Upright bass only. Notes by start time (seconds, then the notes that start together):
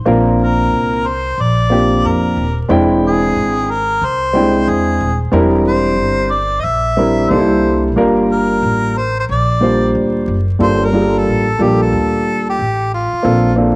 0.06 A#1
0.73 C2
1.38 A#1
2.04 F2
2.37 D#1
2.70 E1
3.36 G#1
4.02 C2
4.67 E2
5.00 D#1
5.33 E1
5.98 G1
6.64 A#1
7.31 C2
7.97 G1
8.63 A1
9.29 A#1
9.95 D2
10.28 F#1
10.60 G1
11.27 A1
11.60 A#1
11.93 D2
12.59 A1
13.13 muted upright bass stroke
13.25 A#1